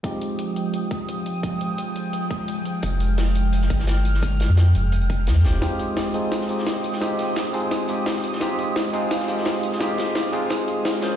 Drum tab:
HH |x-x-x-x-x-x-x-x-|x-x-x-x-x-x-x-x-|x-x-x-x-x-x-x-x-|x-x-x-x-xxx-x-x-|
SH |----------------|----------------|----------------|----------------|
SD |----------------|----------------|----o----o-oo--o|--o-o-------ooo-|
BD |o---------o-----|o---------o-----|o---------o-----|o---------o-----|

HH |x-x-x-x-x-x-x-x-|x-x-x-x-xxx-x-x-|x-x-x-x-x-x-x-x-|x-x-x-x-xxx-x-x-|
SH |-xx---x---x---x-|-xx---x---x---x-|-xx---x---x---x-|-xx---x---x---x-|
SD |o---o---oo-oo--o|o-o-o---o---oo-o|o---o---oo-oo--o|o-o-o---o---ooo-|
BD |o---o---o---o---|o---o---o---o---|o---o---o---o---|o---o---o---o---|